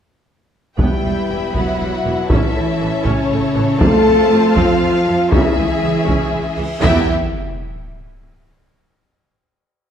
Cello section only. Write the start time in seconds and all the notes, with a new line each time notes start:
0.79 G3
1.55 F#3
2.30 E3
3.05 C#3
3.80 A3
4.57 F3
5.32 E3
6.83 E3